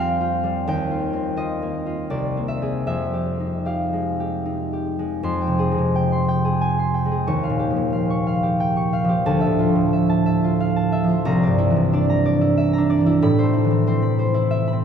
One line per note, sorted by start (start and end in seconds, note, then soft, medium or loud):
0.00 0.71 F2 medium
0.00 0.42 G3 soft
0.00 1.12 C4 medium
0.00 0.20 F4 medium
0.00 2.14 F5 medium
0.00 0.67 G5 medium
0.00 0.71 G#5 medium
0.00 1.18 C6 medium
0.21 0.90 F4 soft
0.44 2.14 G3 soft
0.67 2.15 D#2 medium
0.67 2.15 G5 medium
0.91 1.36 F4 soft
1.13 2.61 C4 soft
1.37 1.85 F4 soft
1.37 2.14 D#5 medium
1.62 2.36 A#3 soft
1.86 2.15 F4 soft
2.10 2.91 C2 medium
2.10 2.76 D5 medium
2.37 2.92 A#3 soft
2.48 2.85 E5 medium
2.62 6.52 C4 soft
2.62 5.58 G#4 soft
2.87 5.22 F2 soft
2.87 5.27 E5 medium
3.13 3.65 G4 soft
3.40 4.44 D#4 soft
3.66 4.19 G4 soft
3.66 7.42 F5 soft
3.93 4.98 G#3 soft
4.20 4.72 G4 soft
4.46 5.27 D#4 soft
4.73 7.58 G4 soft
4.99 5.70 G#3 soft
5.23 7.31 F2 medium
5.23 6.11 C6 medium
5.41 5.94 G5 soft
5.47 5.77 C3 soft
5.59 6.43 G#4 soft
5.72 7.04 G#3 soft
5.78 7.31 C3 soft
5.95 6.27 G5 medium
6.12 6.77 C6 medium
6.28 6.93 G5 medium
6.44 7.10 G#4 soft
6.61 7.31 G#5 medium
6.79 7.31 C6 soft
6.94 8.59 G5 soft
7.05 7.31 G#3 soft
7.11 7.31 G#4 soft
7.27 9.29 D#2 medium
7.27 8.09 C#6 medium
7.43 7.91 F5 soft
7.50 7.75 A#2 soft
7.59 8.42 G4 soft
7.70 9.03 F3 soft
7.76 9.29 A#2 soft
7.93 8.26 F5 soft
8.10 8.75 C#6 medium
8.27 8.92 F5 medium
8.43 9.08 G4 soft
8.60 9.29 G5 medium
8.77 9.29 C#6 medium
8.93 10.59 F5 medium
9.04 9.67 F3 medium
9.09 9.29 G4 medium
9.26 11.29 D2 medium
9.26 10.08 A5 medium
9.41 9.92 E5 soft
9.47 9.74 A2 soft
9.59 10.43 F4 soft
9.69 11.02 F3 soft
9.75 11.29 A2 soft
9.93 10.25 E5 soft
10.09 10.75 A5 medium
10.26 10.91 E5 medium
10.44 11.08 F4 soft
10.60 11.30 F5 medium
10.76 11.29 A5 medium
10.92 12.56 E5 medium
11.04 11.29 F3 soft
11.09 11.29 F4 soft
11.25 13.23 C2 medium
11.25 12.08 A#5 medium
11.43 11.92 D5 medium
11.47 11.75 G2 soft
11.58 12.40 E4 medium
11.70 12.99 E3 soft
11.76 13.24 G2 soft
11.93 12.77 D4 medium
11.93 12.24 D5 medium
12.10 12.72 A#5 medium
12.25 12.89 D5 medium
12.41 13.05 E4 medium
12.57 14.49 E5 medium
12.73 13.24 A#5 medium
12.78 13.24 D4 medium
12.90 13.24 D5 medium
13.01 13.24 E3 medium
13.06 13.52 E4 medium
13.22 14.85 A2 medium
13.22 14.01 B5 medium
13.39 13.86 C5 medium
13.43 14.85 A3 medium
13.53 14.33 E4 medium
13.65 13.70 E3 medium
13.71 14.85 E3 soft
13.87 14.71 C4 medium
13.87 14.18 C5 medium
14.02 14.66 B5 medium
14.19 14.83 C5 medium
14.34 14.85 E4 medium
14.51 14.85 E5 medium
14.68 14.85 B5 medium
14.73 14.85 C4 soft